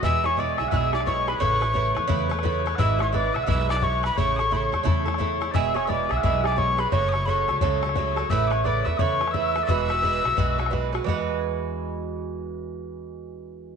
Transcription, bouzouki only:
X:1
M:4/4
L:1/8
Q:"Swing" 1/4=174
K:Emix
V:1 name="Bouzouki"
[B,,G,EG] [G,EG] [B,,G,EG] [G,EG] [B,,G,EG] [G,EG] [B,,G,EG] [G,EG] | [C,A,EB] [A,EB] [C,A,EB] [A,EB] [C,A,EB] [A,EB] [C,A,EB] [A,EB] | [E,G,EB] [G,EB] [E,G,EB] [G,EB] [E,G,EB] [G,EB] [E,G,EB] [G,EB] | [C,A,EA] [A,EA] [C,A,EA] [A,EA] [C,A,EA] [A,EA] [C,A,EA] [A,EA] |
[B,,G,EG] [G,EG] [B,,G,EG] [G,EG] [B,,G,EG] [G,EG] [B,,G,EG] [G,EG] | [C,F,A,A] [F,A,A] [C,F,A,A] [F,A,A] [C,F,A,A] [F,A,A] [C,F,A,A] [F,A,A] | [C,A,EB] [A,EB] [C,A,EB] [A,EB] [C,A,EB] [A,EB] [C,A,EB] [A,EB] | [E,G,FB] [G,FB] [E,G,FB] [G,FB] [E,G,FB] [G,FB] [E,G,FB] [G,FB] |
[E,G,FB]8- | [E,G,FB]8 |]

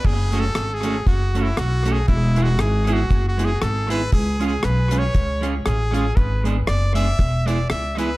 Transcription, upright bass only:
X:1
M:4/4
L:1/8
Q:"Swing" 1/4=118
K:F#m
V:1 name="Upright bass" clef=bass
F,,,2 G,,,2 F,,,2 B,,,2 | E,,,2 G,,,2 F,,,2 G,,,2 | C,,2 B,,,2 C,,2 A,,,2 | G,,,2 F,,,2 E,,,2 C,,2 |]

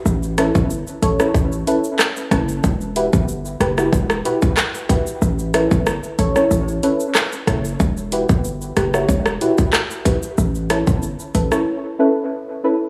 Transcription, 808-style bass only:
X:1
M:4/4
L:1/16
Q:1/4=93
K:Amix
V:1 name="808-style bass" clef=bass
A,,,3 G,,,2 z A,,, z A,,,2 z4 F,,,2 | E,,,3 G,,,3 F,,,2 E,,,2 z6 | A,,,3 G,,,2 z A,,, z A,,,2 z4 F,,,2 | E,,,3 G,,,3 F,,,2 E,,,2 z6 |
A,,,3 G,,,2 z A,,, z8 z |]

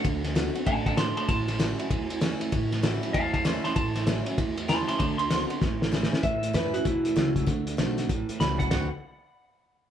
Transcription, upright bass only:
X:1
M:4/4
L:1/8
Q:"Swing" 1/4=194
K:D
V:1 name="Upright bass" clef=bass
D,,4 A,,,4 | A,,,4 E,,4 | A,,,4 E,,4 | A,,,4 E,,4 |
D,,4 A,,,4 | A,,2 F,,2 E,,2 C,,2 | D,,2 B,,,2 A,,, z C,,2 | D,, z6 z |]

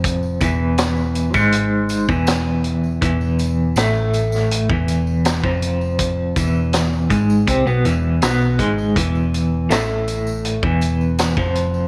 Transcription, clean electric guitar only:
X:1
M:4/4
L:1/16
Q:1/4=81
K:none
V:1 name="Clean electric guitar" clef=bass
[F,,F,]2 [E,,E,]4- [E,,E,] [^G,,^G,]4 [E,,E,]4- [E,,E,] | [E,,E,]4 [A,,A,]4- [A,,A,] [E,,E,]4 [F,,F,]3- | [F,,F,]2 [E,,E,]4 [^G,,^G,]2 [C,C] [B,,B,] [E,,E,]2 [B,,B,]2 [G,,G,]2 | [E,,E,]4 [A,,A,]4- [A,,A,] [E,,E,]4 [F,,F,]3 |]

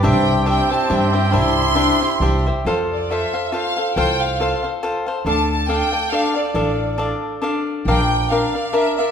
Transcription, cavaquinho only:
X:1
M:3/4
L:1/8
Q:"Swing" 1/4=138
K:C
V:1 name="Cavaquinho"
[DGce]2 [DGce] [Gce] [DGce] [Gce] | [DGce]2 [DGce] [Gce] [DGce] [Gce] | [K:F] [FAcf]2 [FAcf] [Acf] [FAcf] [Acf] | [FAcf]2 [FAcf] [Acf] [FAcf] [Acf] |
[DAdf]2 [DAdf] [Adf] [DAdf] [Adf] | [DAdf]2 [DAdf]2 [DAdf]2 | [DBdf]2 [DBdf] [Bdf] [DBdf] [Bdf] |]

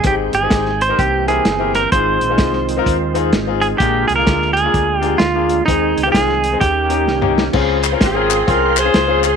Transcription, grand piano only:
X:1
M:4/4
L:1/16
Q:"Swing" 1/4=128
K:Dblyd
V:1 name="Grand piano"
[CEGA]2 z [CEGA]2 z2 [CEGB] z2 [C=EGB]2 z [CEGB]2 z | [CEFA]2 z [CEFA]2 z2 [CEFB]2 z [CEFA]2 z [CEFA]2 z | [B,=DFA]2 z [B,DFA]2 z2 [B,DFA]2 z [B,DFA]2 z [B,DFA]2 z | [A,CEA]2 z [A,CEF]2 z2 [A,CEA] z2 [B,DEG]2 z [B,DEG]2 z |
[CDFA]2 z [CDFB] z [CDFB]2 z [CDFA]2 z [CDFA] z [CDFA]2 z |]
V:2 name="Grand piano" clef=bass
A,,6 z2 C,6 z2 | A,,6 z8 z2 | B,,6 z8 z2 | E,6 z2 E,6 z2 |
D,6 z8 z2 |]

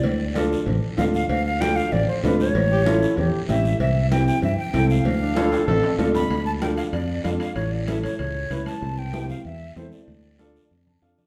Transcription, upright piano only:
X:1
M:4/4
L:1/8
Q:1/4=192
K:Ddor
V:1 name="Upright piano"
z2 [DFA] z3 [DFA] z | z2 [DFA] z3 [DFA] z | z2 [^CEA] z3 [CEG] z | z2 [CEG] z3 [CEA] z |
z2 [DFA] z3 [DFA] z | z2 [DFA] z3 [DFA] z | z2 [^CEA] z3 [CEB] z | z2 [CEG] z3 [CEA] z |
z2 [DFA] z2 a [DFAf] d |]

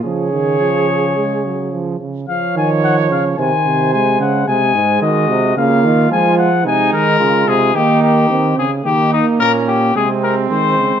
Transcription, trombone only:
X:1
M:4/4
L:1/8
Q:1/4=109
K:Db
V:1 name="Trombone" clef=bass
F, E, F,2 A, G, F, D, | F,4 E,2 A,2 | A,4 B,2 A,2 | A,4 B,2 C z |
B,4 A,2 A,2 |]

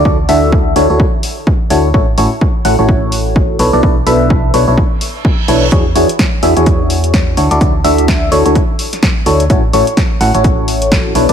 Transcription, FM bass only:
X:1
M:4/4
L:1/16
Q:"Swing 16ths" 1/4=127
K:A
V:1 name="FM bass" clef=bass
D,,2 D,,4 D,, D,, z6 D,,2 | A,,,2 A,,, z3 A,,, A,,,6- A,,, B,,, B,,, | B,,,2 B,,,4 B,,, B,,, z6 B,,,2 | E,,2 E,, z3 E,, E,,6- E,, D,, D,, |
D,,2 D,,4 D,, D,, z6 D,,2 | A,,,2 A,,, z3 A,,, A,,,6- A,,, B,,, B,,, |]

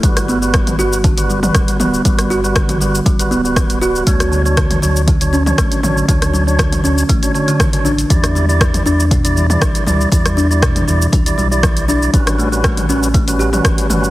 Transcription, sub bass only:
X:1
M:4/4
L:1/8
Q:1/4=119
K:Edor
V:1 name="Sub bass" clef=bass
G,,,3 G,,,3 D,,, D,,, | G,,,3 G,,, D,,, D,,,3 | D,,3 D,,3 A,,, A,,, | D,,3 D,, A,,, z2 A,,, |
E,,3 E,,3 B,,, D,, | E,,3 E,, D,, B,,,3 | A,,,3 A,,,3 E,,, G,,, |]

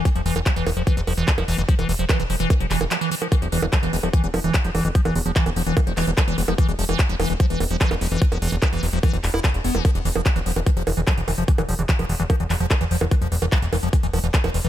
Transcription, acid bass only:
X:1
M:4/4
L:1/16
Q:1/4=147
K:none
V:1 name="Acid bass" clef=bass
z F, E, E, F, E, E, F, E, E, F, E, E, F, E, E, | F, E, E, F, E, E, F, E, z F, E, E, F, E, E, F, | E, F, E, E, F, E, E, F, E, E, F, E, z F, E, E, | F, E, E, F, E, E, F, E, z F, E, E, F, E, E, F, |
E, E, F, E, z F, E, E, F, E, E, F, E, E, F, E, | E, F, E, E, F, E, E, F, E, E, z E ^D, z B, E, | z E, E, F, E, E, F, E, E, F, E, E, F, E, E, F, | E, E, F, E, E, F, E, E, F, E, E, F, E, E, F, E, |
E, F, E, E, F, E, E, F, E, E, F, E, E, F, E, E, |]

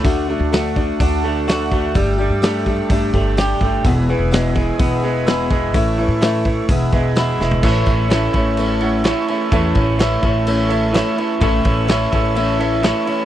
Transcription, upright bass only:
X:1
M:4/4
L:1/16
Q:1/4=127
K:A
V:1 name="Upright bass" clef=bass
D,,3 D,,4- D,, D,,8 | =G,,,3 =G,,4- G,, G,,,2 G,,,4 G,,,2 | E,,,3 E,,,4- E,,, E,,,8 | A,,,3 A,,4- A,, E,,,2 E,,,4 E,,,2 |
A,,,2 A,,,4 A,,,8 z2 | E,,2 A,,,4 A,,,8 z2 | A,,,2 A,,,4 A,,,8 z2 |]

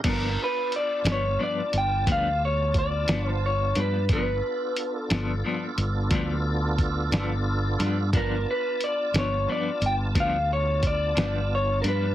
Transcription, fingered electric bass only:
X:1
M:12/8
L:1/8
Q:3/8=59
K:Gmix
V:1 name="Fingered electric bass" clef=bass
G,,, z2 G,,, z G,,, D,,3 G,,,2 G,, | G,,, z2 G,,, z G,,, D,,3 G,,,2 G,, | G,,, z2 G,,, z G,,, D,,3 G,,,2 G,, |]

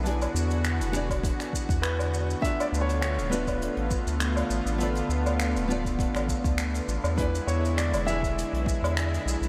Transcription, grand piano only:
X:1
M:4/4
L:1/8
Q:"Swing 16ths" 1/4=101
K:Dlyd
V:1 name="Grand piano"
z6 B2 | (3e d c c B4 z | z8 | B c d e4 z |]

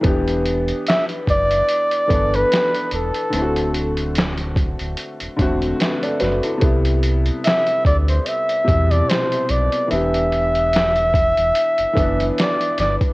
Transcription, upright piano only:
X:1
M:4/4
L:1/16
Q:"Swing 16ths" 1/4=73
K:Em
V:1 name="Upright piano"
z16 | z12 [Be] [Ad] [FB] [EA]- | [EA] z12 z3 | z16 |]
V:2 name="Upright piano"
[E,B,DG]8 z2 [E,B,DA]6 | [D,A,CEF]8 z2 [D,A,CF]6 | [C,G,B,E]8 z2 [B,,C,G,E]6 | [E,B,DG]8 z2 [E,B,DE]6 |]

